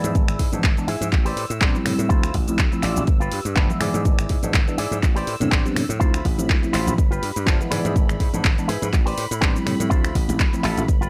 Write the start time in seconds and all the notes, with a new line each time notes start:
Already playing: E3 G#3 B3 E4 G#4 D5 E6
0.03 G#2, closed hi-hat, tambourine, high conga, cabasa
0.15 G#1 E3 G#3 B3 D4, kick, closed hi-hat, tambourine, cabasa
0.28 finger snap, closed hi-hat, cabasa
0.39 G#2, kick, open hi-hat, tambourine, low conga
0.52 G#2 E3 G#3 B3 D4, closed hi-hat, tambourine, high conga, cabasa
0.63 G#1, muted clean electric guitar stroke, kick, clap, closed hi-hat, cabasa
0.77 E3 G#3 B3 D4, muted clean electric guitar stroke, closed hi-hat, tambourine, cabasa
0.88 G#2 E4 G#4 E5, open hi-hat, tambourine
1.01 G#2, closed hi-hat, tambourine, high conga, cabasa
1.12 A1, kick, clap, closed hi-hat, cabasa
1.25 G4 B4 C5 D5, open hi-hat, tambourine, cabasa
1.36 A2, open hi-hat
1.50 A2, closed hi-hat, cabasa
1.61 A1 G3 B3 C4 D4 G4 B4 C5 D5, kick, clap, closed hi-hat, cabasa
1.75 G3 C4 E4, closed hi-hat, tambourine, high conga, cabasa
1.85 A2, finger snap, muted clean electric guitar stroke, open hi-hat, tambourine, low conga
1.99 A2, closed hi-hat, tambourine, high conga, cabasa
2.09 D2 F3 A3 C4 E4 F4 C5, kick, closed hi-hat, cabasa
2.23 finger snap, closed hi-hat, cabasa
2.34 A1, kick, open hi-hat, tambourine, low conga
2.47 A1 F3 A3 C4 E4, closed hi-hat, tambourine, high conga, cabasa
2.58 D2, muted clean electric guitar stroke, kick, clap, closed hi-hat, cabasa
2.71 F3 A3 C4 E4, muted clean electric guitar stroke, closed hi-hat, tambourine, cabasa
2.83 A1 E4 F4 D5, clap, open hi-hat
2.96 A1, closed hi-hat, tambourine, high conga, cabasa
3.07 G1, kick, closed hi-hat, cabasa
3.20 F4 G4 B4, closed hi-hat, tambourine, cabasa
3.32 G2, open hi-hat, tambourine
3.45 G2, closed hi-hat, cabasa
3.55 G1 F3 A3 B3 D4 F4 G4 B4, kick, clap, closed hi-hat, cabasa
3.70 E3 G#3 B3 E4, closed hi-hat, tambourine, high conga, cabasa
3.80 G#2 E4 G#4 D5, finger snap, open hi-hat, tambourine, low conga
3.94 G#2, closed hi-hat, tambourine, high conga, cabasa
4.05 G#1 E3 G#3 B3 D4, kick, closed hi-hat, cabasa
4.19 finger snap, closed hi-hat, cabasa
4.29 G#2, kick, open hi-hat, tambourine, low conga
4.43 G#2 E3 G#3 B3 D4, closed hi-hat, tambourine, high conga, cabasa
4.53 G#1, muted clean electric guitar stroke, kick, clap, closed hi-hat, cabasa
4.67 E3 G#3 B3 D4, muted clean electric guitar stroke, closed hi-hat, tambourine, cabasa
4.78 G#2 E4 G#4 D5, open hi-hat
4.91 G#2, closed hi-hat, tambourine, high conga, cabasa
5.03 A1, kick, clap, closed hi-hat, cabasa
5.16 G4 B4 C5 D5, open hi-hat, cabasa
5.27 A2, open hi-hat, tambourine
5.40 A2 G3 B3 C4 D4, closed hi-hat, tambourine, low conga, cabasa
5.51 A1 G4 B4 C5 D5, kick, clap, closed hi-hat, cabasa
5.65 G3 B3 C4 D4, closed hi-hat, tambourine, high conga, cabasa
5.76 A2, finger snap, muted clean electric guitar stroke, open hi-hat, tambourine, low conga
5.89 A2, closed hi-hat, tambourine, high conga, cabasa
6.00 D2 F3 A3 C4 E4 F4 C5 B5, kick, closed hi-hat, cabasa
6.14 finger snap, closed hi-hat, cabasa
6.25 A1, kick, open hi-hat, tambourine, low conga
6.38 A1 F3 A3 C4 E4, closed hi-hat, tambourine, high conga, cabasa
6.49 D2, muted clean electric guitar stroke, kick, clap, closed hi-hat, tambourine, cabasa
6.62 F3 A3 C4 E4, muted clean electric guitar stroke, closed hi-hat, cabasa
6.73 A1 E4 F4 C5, clap, open hi-hat, tambourine
6.87 A1, closed hi-hat, tambourine, high conga, cabasa
6.98 G1, kick, closed hi-hat, tambourine, cabasa
7.11 F4 G4 B4, closed hi-hat, tambourine, cabasa
7.22 G2, open hi-hat, tambourine
7.36 G2, closed hi-hat, tambourine, cabasa
7.46 G1 F3 A3 B3 D4 F4 G4 A4, kick, clap, closed hi-hat, cabasa
7.60 E3 G#3 B3 E4, closed hi-hat, tambourine, high conga, cabasa
7.71 G#2 E4 G#4 D5, finger snap, open hi-hat, tambourine, low conga
7.85 G#2, closed hi-hat, tambourine, high conga, cabasa
7.96 G#1 E3 G#3 B3 D4, kick, closed hi-hat, tambourine, cabasa
8.09 finger snap, closed hi-hat, cabasa
8.20 G#2, kick, open hi-hat, tambourine, low conga
8.33 G#2 E3 G#3 B3 D4, closed hi-hat, tambourine, high conga, cabasa
8.43 G#1, muted clean electric guitar stroke, kick, clap, closed hi-hat, tambourine, cabasa
8.57 E3 G#3 B3 D4, muted clean electric guitar stroke, closed hi-hat, cabasa
8.68 G#2 E4 G#4 B4, open hi-hat, tambourine
8.82 G#2, closed hi-hat, tambourine, high conga, cabasa
8.93 A1, kick, clap, closed hi-hat, cabasa
9.06 G4 B4 C5 D5, open hi-hat, tambourine, cabasa
9.18 A2, open hi-hat, tambourine
9.31 A2, closed hi-hat, cabasa
9.41 A1 G3 B3 C4 D4 G4 B4 C5 D5, kick, clap, closed hi-hat, cabasa
9.55 G3 C4 E4, closed hi-hat, tambourine, high conga, cabasa
9.66 A2, finger snap, muted clean electric guitar stroke, open hi-hat, tambourine, low conga
9.80 A2, closed hi-hat, tambourine, high conga, cabasa
9.90 D2 F3 A3 C4 E4 F4 C5, kick, closed hi-hat, tambourine, cabasa
10.05 finger snap, closed hi-hat, cabasa
10.15 A1, kick, open hi-hat, tambourine, low conga
10.29 A1 F3 A3 C4 E4, closed hi-hat, tambourine, high conga, cabasa
10.39 D2, muted clean electric guitar stroke, kick, clap, closed hi-hat, tambourine, cabasa
10.52 F3 A3 C4 E4, muted clean electric guitar stroke, closed hi-hat, tambourine, cabasa
10.63 A1 E4 F4 A4, clap, open hi-hat, tambourine
10.77 A1, closed hi-hat, tambourine, high conga, cabasa
10.88 G1, kick, closed hi-hat, tambourine, cabasa
11.01 F4 G4 B4, closed hi-hat, tambourine, cabasa